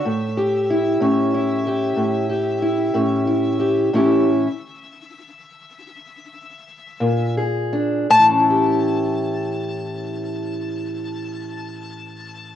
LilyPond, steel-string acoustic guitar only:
\new Staff \with { instrumentName = "Steel-string acoustic guitar" } { \time 12/8 \key a \mixolydian \tempo 4. = 58 << { r8 g'8 e'8 cis'8 e'8 g'4 g'8 e'8 cis'8 e'8 g'8 | <e cis' e' g'>4 r1 aes'8 d'8 | <e cis' e' g'>1. | } \\ { a,4. a,4. a,4. a,4. | a,4 r2. r8 bes,4. | a,1. | } >> }